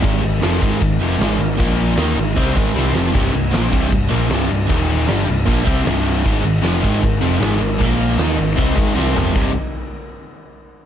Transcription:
<<
  \new Staff \with { instrumentName = "Analog synth pad" } { \time 4/4 \key c \minor \tempo 4 = 154 <aes ees' bes'>1 | r4 <aes ees' bes'>2. | r1 | r1 |
<aes ees' bes'>1 | r4 <aes ees' bes'>2. | r1 | }
  \new Staff \with { instrumentName = "Distorted electric guitar" } { \clef bass \time 4/4 \key c \minor <aes, ees aes>8 <aes, ees>8 <f, c f>8 <aes, ees aes>8 <aes, ees>8 <f, c f>8 <aes, ees aes>8 <aes, ees>8 | <bes, f bes>4 <ees bes ees'>8 <aes, ees>8 <c g c'>8 <aes, ees aes>8 <c g c'>8 <f, c f>8 | <c, g, c>8 <c, g,>8 <bes, f bes>8 <c, g, c>8 <c, g,>8 <bes, f bes>8 <c, g, c>8 <c, g,>8 | <ees, bes, ees>4 <g, d g>8 <c, g,>8 <bes, f bes>8 <c g c'>8 <c, g, c>4 |
<aes, ees aes>8 <aes, ees>8 <f, c f>8 <aes, ees aes>8 <aes, ees>8 <f, c f>8 <aes, ees aes>8 <aes, ees>8 | <bes, f bes>4 <ees bes ees'>8 <aes, ees>8 <c g c'>8 <aes, ees aes>8 <c g c'>8 <f, c f>8 | <c, g, c>8 r2. r8 | }
  \new Staff \with { instrumentName = "Overdriven electric guitar" } { \clef bass \time 4/4 \key c \minor <aes, ees aes>8 <aes, ees>8 <f, c f>8 <aes, ees aes>8 <aes, ees>8 <f, c f>8 <aes, ees aes>8 <aes, ees>8 | <bes, f bes>4 <ees bes ees'>8 <aes, ees>8 <c g c'>8 <aes, ees aes>8 <c g c'>8 <f, c f>8 | <c, g, c>8 <c, g,>8 <bes, f bes>8 <c, g, c>8 <c, g,>8 <bes, f bes>8 <c, g, c>8 <c, g,>8 | <ees, bes, ees>4 <g, d g>8 <c, g,>8 <bes, f bes>8 <c g c'>8 <c, g, c>4 |
<aes, ees aes>8 <aes, ees>8 <f, c f>8 <aes, ees aes>8 <aes, ees>8 <f, c f>8 <aes, ees aes>8 <aes, ees>8 | <bes, f bes>4 <ees bes ees'>8 <aes, ees>8 <c g c'>8 <aes, ees aes>8 <c g c'>8 <f, c f>8 | <c, g, c>8 r2. r8 | }
  \new Staff \with { instrumentName = "Overdriven electric guitar" } { \clef bass \time 4/4 \key c \minor <aes, ees aes>8 <aes, ees>8 <f, c f>8 <aes, ees aes>8 <aes, ees>8 <f, c f>8 <aes, ees aes>8 <aes, ees>8 | <bes, f bes>4 <ees bes ees'>8 <aes, ees>8 <c g c'>8 <aes, ees aes>8 <c g c'>8 <f, c f>8 | <c, g, c>8 <c, g,>8 <bes, f bes>8 <c, g, c>8 <c, g,>8 <bes, f bes>8 <c, g, c>8 <c, g,>8 | <ees, bes, ees>4 <g, d g>8 <c, g,>8 <bes, f bes>8 <c g c'>8 <c, g, c>4 |
<aes, ees aes>8 <aes, ees>8 <f, c f>8 <aes, ees aes>8 <aes, ees>8 <f, c f>8 <aes, ees aes>8 <aes, ees>8 | <bes, f bes>4 <ees bes ees'>8 <aes, ees>8 <c g c'>8 <aes, ees aes>8 <c g c'>8 <f, c f>8 | <c, g, c g ees'>8 r2. r8 | }
  \new Staff \with { instrumentName = "Picked electric bass" } { \clef bass \time 4/4 \key c \minor aes,,8 aes,,8 f,,8 aes,,8 aes,,8 f,,8 aes,,8 aes,,8 | bes,,4 ees,8 aes,,8 c,8 aes,,8 c,8 f,,8 | c,,8 c,,8 bes,,8 c,,8 c,,8 bes,,8 c,,8 c,,8 | ees,,4 g,,8 c,,8 bes,,8 c,8 c,,4 |
aes,,8 aes,,8 f,,8 aes,,8 aes,,8 f,,8 aes,,8 aes,,8 | bes,,4 ees,8 aes,,8 c,8 aes,,8 c,8 f,,8 | c,,8 r2. r8 | }
  \new DrumStaff \with { instrumentName = "Drums" } \drummode { \time 4/4 <cymc bd>8 cymc16 sn16 <cymc sn>8 <cymc bd>8 <cymc bd>8 cymc8 <cymc sn>8 cymc8 | <cymc bd>8 cymc16 sn16 <cymc sn>8 cymc8 <cymc bd>8 <cymc bd>8 sn8 sn8 | <cymc bd>8 cymc8 <cymc sn>8 <cymc bd>8 <cymc bd>8 cymc8 <cymc sn>8 cymc8 | <cymc bd>8 cymc8 <cymc sn>8 cymc8 <cymc bd>8 <cymc bd>8 <cymc sn>8 cymc8 |
<cymc bd>8 cymc8 <cymc sn>8 <cymc bd>8 <cymc bd>8 cymc8 <cymc sn>8 cymc8 | <cymc bd>8 cymc8 <cymc sn>8 cymc8 <cymc bd>8 <cymc bd>8 sn8 tomfh8 | <cymc bd>4 r4 r4 r4 | }
>>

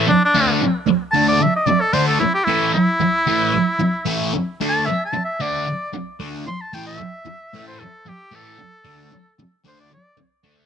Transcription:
<<
  \new Staff \with { instrumentName = "Oboe" } { \time 4/4 \key d \major \tempo 4 = 113 \tuplet 3/2 { d'8 d'8. r16 } r4 a''16 d''16 e''16 dis''16 d''16 a'16 c''16 a'16 | e'16 g'16 e'8 e'2. | \tuplet 3/2 { r4 a''8 e''8 a''8 e''8 } d''4 r4 | c'''16 a''16 g''16 e''4. c''16 a'8 g'8 a'8~ |
a'4. r8 c''16 d''16 d''8 r4 | }
  \new Staff \with { instrumentName = "Distorted electric guitar" } { \time 4/4 \key d \major r8 <d a d'>8 r4 <d a d'>8 r4 <d a d'>8 | r8 <a, e a>8 r4 <a, e a>8 r4 <a, e a>8 | r8 <d a d'>8 r4 <d a d'>8 r4 <d a d'>8 | r8 <a, e a>8 r4 <a, e a>8 r4 <a, e a>8 |
r8 <d a d'>8 r4 <d a d'>8 r4 <d a d'>8 | }
>>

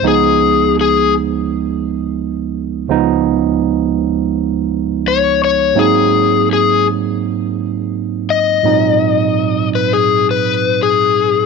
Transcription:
<<
  \new Staff \with { instrumentName = "Electric slide guitar" } { \time 4/4 \key des \major \tempo 4 = 84 aes'4 aes'8 r2 r8 | r2. des''8 des''8 | aes'4 aes'8 r2 ees''8~ | ees''4. ces''16 aes'8 ces''8. aes'4 | }
  \new Staff \with { instrumentName = "Tine electric piano" } { \clef bass \time 4/4 \key des \major <des, f aes ces' ees'>1 | <des, f aes ces' ees'>1 | <aes, ges bes c' ees'>1 | <aes, bes, ges c' ees'>1 | }
>>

